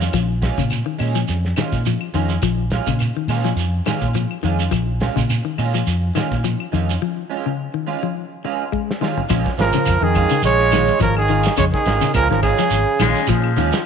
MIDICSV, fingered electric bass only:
0, 0, Header, 1, 2, 480
1, 0, Start_track
1, 0, Key_signature, -5, "minor"
1, 0, Tempo, 571973
1, 112, Time_signature, 4, 2, 24, 8
1, 11629, End_track
2, 0, Start_track
2, 0, Title_t, "Fingered electric bass"
2, 0, Program_c, 0, 33
2, 113, Note_on_c, 0, 34, 95
2, 413, Note_off_c, 0, 34, 0
2, 486, Note_on_c, 0, 46, 82
2, 680, Note_off_c, 0, 46, 0
2, 841, Note_on_c, 0, 46, 82
2, 1033, Note_off_c, 0, 46, 0
2, 1083, Note_on_c, 0, 41, 86
2, 1275, Note_off_c, 0, 41, 0
2, 1444, Note_on_c, 0, 46, 72
2, 1640, Note_off_c, 0, 46, 0
2, 1798, Note_on_c, 0, 41, 85
2, 1993, Note_off_c, 0, 41, 0
2, 2032, Note_on_c, 0, 34, 85
2, 2335, Note_off_c, 0, 34, 0
2, 2408, Note_on_c, 0, 46, 75
2, 2604, Note_off_c, 0, 46, 0
2, 2751, Note_on_c, 0, 46, 82
2, 2950, Note_off_c, 0, 46, 0
2, 2987, Note_on_c, 0, 41, 92
2, 3188, Note_off_c, 0, 41, 0
2, 3373, Note_on_c, 0, 46, 80
2, 3568, Note_off_c, 0, 46, 0
2, 3723, Note_on_c, 0, 41, 91
2, 3918, Note_off_c, 0, 41, 0
2, 3961, Note_on_c, 0, 34, 91
2, 4263, Note_off_c, 0, 34, 0
2, 4339, Note_on_c, 0, 46, 83
2, 4532, Note_off_c, 0, 46, 0
2, 4688, Note_on_c, 0, 46, 77
2, 4881, Note_off_c, 0, 46, 0
2, 4925, Note_on_c, 0, 41, 93
2, 5120, Note_off_c, 0, 41, 0
2, 5300, Note_on_c, 0, 46, 78
2, 5493, Note_off_c, 0, 46, 0
2, 5651, Note_on_c, 0, 41, 80
2, 5844, Note_off_c, 0, 41, 0
2, 7804, Note_on_c, 0, 34, 94
2, 7910, Note_off_c, 0, 34, 0
2, 8041, Note_on_c, 0, 32, 80
2, 8149, Note_off_c, 0, 32, 0
2, 8286, Note_on_c, 0, 41, 87
2, 8391, Note_off_c, 0, 41, 0
2, 8403, Note_on_c, 0, 41, 93
2, 8602, Note_off_c, 0, 41, 0
2, 8748, Note_on_c, 0, 34, 106
2, 9140, Note_off_c, 0, 34, 0
2, 9242, Note_on_c, 0, 32, 105
2, 9628, Note_off_c, 0, 32, 0
2, 9716, Note_on_c, 0, 41, 96
2, 9823, Note_off_c, 0, 41, 0
2, 9953, Note_on_c, 0, 32, 97
2, 10061, Note_off_c, 0, 32, 0
2, 10190, Note_on_c, 0, 37, 93
2, 10299, Note_off_c, 0, 37, 0
2, 10319, Note_on_c, 0, 32, 86
2, 10517, Note_off_c, 0, 32, 0
2, 10663, Note_on_c, 0, 32, 100
2, 10774, Note_off_c, 0, 32, 0
2, 10906, Note_on_c, 0, 34, 93
2, 11016, Note_off_c, 0, 34, 0
2, 11150, Note_on_c, 0, 46, 110
2, 11388, Note_on_c, 0, 39, 93
2, 11401, Note_off_c, 0, 46, 0
2, 11496, Note_off_c, 0, 39, 0
2, 11629, End_track
0, 0, End_of_file